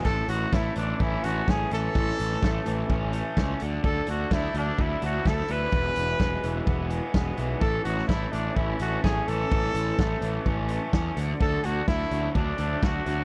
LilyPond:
<<
  \new Staff \with { instrumentName = "Trumpet" } { \time 4/4 \key a \major \tempo 4 = 127 a'8 fis'8 e'8 d'8 e'8 fis'8 gis'8 a'8~ | a'2~ a'8 r4. | a'8 fis'8 e'8 d'8 e'8 fis'8 a'8 b'8~ | b'2~ b'8 r4. |
a'8 fis'8 e'8 d'8 e'8 fis'8 gis'8 a'8~ | a'2~ a'8 r4. | a'8 fis'8 e'4 d'4 fis'4 | }
  \new Staff \with { instrumentName = "Overdriven electric guitar" } { \time 4/4 \key a \major a,4 a8 e8 cis'8 a8 cis'8 e8 | a,4 a8 e8 cis'8 a8 cis'8 d8 | d4 a8 d8 e'8 a8 e'8 d8 | e,4 gis8 e8 b8 gis8 b8 e8 |
a,4 a8 e8 cis'8 a8 cis'8 e8 | a,4 a8 e8 cis'8 a8 cis'8 d8 | d4 a8 fis8 d'8 a8 d'8 fis8 | }
  \new Staff \with { instrumentName = "Picked electric bass" } { \clef bass \time 4/4 \key a \major a,,8 a,,8 a,,8 a,,8 a,,8 a,,8 a,,8 a,,8 | a,,8 a,,8 a,,8 a,,8 a,,4 cis,8 d,8 | d,8 d,8 d,8 d,8 d,8 d,8 d,8 d,8 | e,,8 e,,8 e,,8 e,,8 e,,4 e,,8 b,,8 |
a,,8 a,,8 a,,8 a,,8 a,,8 a,,8 a,,8 a,,8 | a,,8 a,,8 a,,8 a,,8 a,,4 e,8 d,8 | d,8 d,8 d,8 d,8 d,8 d,8 d,8 d,8 | }
  \new DrumStaff \with { instrumentName = "Drums" } \drummode { \time 4/4 <cymc bd>8 hh8 <bd sn>8 hh8 bd8 hh8 <bd sn>8 hh8 | bd8 hh16 sn16 <bd sn>8 hh8 bd8 hh8 <bd sn>8 hh8 | bd8 hh8 <bd sn>8 hh8 bd8 hh8 <bd sn>8 hh8 | bd8 hh8 <bd sn>8 hh8 bd8 hh8 <bd sn>8 hh8 |
bd8 hh16 sn16 <bd sn>8 hh8 bd8 hh8 <bd sn>8 hh8 | bd8 hh8 <bd sn>8 hh8 bd8 hh8 <bd sn>8 hh8 | bd8 hh8 <bd sn>8 hh8 bd8 hh8 <bd sn>8 hh8 | }
>>